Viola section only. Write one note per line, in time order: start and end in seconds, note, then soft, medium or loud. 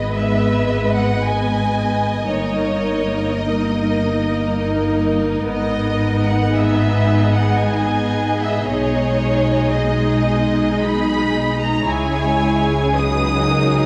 0.00 2.23 G#3 medium
0.00 2.23 B3 medium
2.28 5.44 A#3 medium
2.28 8.63 D#4 medium
5.48 8.67 B3 medium
8.67 11.86 G#3 medium
8.67 11.83 D#4 medium
11.87 12.93 G#3 medium
11.87 12.93 E4 medium
12.98 13.86 F#3 medium
12.98 13.86 D#4 medium